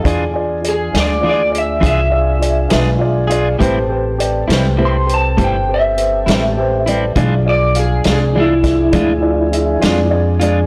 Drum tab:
HH |x-xx-xx-xx-x|x-xx-xx-xx-x|x-xx-xx-xx-x|
SD |---o-----o--|---o-----o--|---o-o---o--|
BD |o-----o-----|o-----o-----|o----oo-----|